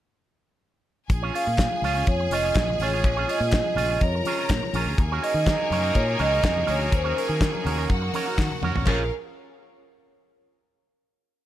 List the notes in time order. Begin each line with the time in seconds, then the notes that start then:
1.09 A#1 C#3 G#3 A#3 F4 G#4 G#5, muted clean electric guitar stroke, kick, closed hi-hat, muted conga
1.23 C#4 F4 G#4 C#5
1.34 C#4 F4 G#4 C#5 F5, open hi-hat, muted conga
1.47 A#2, muted clean electric guitar stroke
1.58 muted clean electric guitar stroke, kick, snare, clap, closed hi-hat
1.71 muted clean electric guitar stroke, high conga
1.82 C#2 C#4 F4 G#4 C#5, open hi-hat, muted conga, high conga, low conga
1.96 C#4 F4 G#4 C#5
2.07 F2 C#5, muted clean electric guitar stroke, kick, closed hi-hat
2.20 muted clean electric guitar stroke
2.30 F1 C#4 F4 G#4 C#5 D#5, open hi-hat, muted conga, high conga
2.45 C#4 F4 G#4 C#5
2.55 A#1, kick, snare, clap, closed hi-hat, high conga
2.68 muted clean electric guitar stroke, high conga, low conga
2.79 A1 C#4 F4 G#4 C#5, open hi-hat, muted conga, high conga
2.83 C#5
2.93 C#4 F4 G#4 C#5
3.04 A#1 C3, muted clean electric guitar stroke, kick, closed hi-hat
3.17 C#4 F4 G#4 C#5
3.28 C#4 F4 G#4 C#5 D#5, open hi-hat, muted conga
3.40 A#2, muted clean electric guitar stroke
3.52 D#5, muted clean electric guitar stroke, kick, snare, clap, closed hi-hat
3.65 muted clean electric guitar stroke, high conga
3.75 A#1 C#4 F4 G#4 C#5, open hi-hat, high conga, low conga
3.90 C#4 F4 G#4 C#5
4.01 F2 A#4 C#5 A#5, muted clean electric guitar stroke, kick, closed hi-hat
4.15 muted clean electric guitar stroke
4.25 C#4 F4 G#4 C#5, open hi-hat, high conga
4.39 C#4 F4 G#4 C#5
4.49 A#2, kick, snare, clap, closed hi-hat, muted conga, high conga
4.63 muted clean electric guitar stroke, high conga, low conga
4.73 A#1 C#4 F4 G#4 C#5, open hi-hat, high conga
4.86 D2 C#4 F4 G#4 C#5
4.98 D#2 F#3 A#3 D#4 G#4 A#4 G#5, muted clean electric guitar stroke, kick, closed hi-hat
5.12 C#4 F#4 A#4 C#5
5.22 C#4 F#4 A#4 C#5 D#5, open hi-hat
5.34 D#3, muted clean electric guitar stroke
5.47 muted clean electric guitar stroke, kick, snare, clap, closed hi-hat
5.59 muted clean electric guitar stroke, high conga
5.70 F#2 C#4 F#4 A#4 C#5, open hi-hat, muted conga, high conga, low conga
5.83 C#4 F#4 A#4 C#5
5.95 A#2 C#5, muted clean electric guitar stroke, kick, closed hi-hat, muted conga
6.07 muted clean electric guitar stroke
6.18 C#2 C#4 F#4 A#4 C#5 D#5, open hi-hat, muted conga, high conga
6.32 C#4 F#4 A#4 C#5
6.43 F2, muted clean electric guitar stroke, kick, snare, clap, closed hi-hat, muted conga, high conga
6.55 muted clean electric guitar stroke, high conga, low conga
6.66 D2 C#4 F#4 A#4 C#5, open hi-hat, muted conga, high conga
6.80 C#4 F#4 A#4 C#5
6.92 D#2 C#4 C5, kick, closed hi-hat
7.04 C#4 F#4 A#4 C#5
7.16 C#4 F#4 A#4 C#5, open hi-hat, muted conga
7.29 D#3, muted clean electric guitar stroke
7.41 muted clean electric guitar stroke, kick, snare, clap, closed hi-hat
7.54 muted clean electric guitar stroke, high conga
7.65 D#2 C#4 F#4 A#4 C#5, open hi-hat, muted conga, high conga, low conga
7.78 C#4 F#4 A#4 C#5
7.90 F#2 F#4 F#5, muted clean electric guitar stroke, kick, closed hi-hat
8.02 muted clean electric guitar stroke
8.13 C#4 F#4 A#4 C#5, open hi-hat, muted conga, high conga
8.26 C#4 F#4 A#4 C#5
8.38 D#3, muted clean electric guitar stroke, kick, snare, clap, high conga
8.52 muted clean electric guitar stroke, high conga, low conga
8.61 F2 C#4 F#4 A#4 C#5, mid tom, muted conga, high conga
8.75 A1 C#4 F#4 A#4 C#5, floor tom
8.86 A#1 C#3 F3 G#3 A#3 C#4 F4 G#4 A#4 C#5 F5, kick, clap, crash, high conga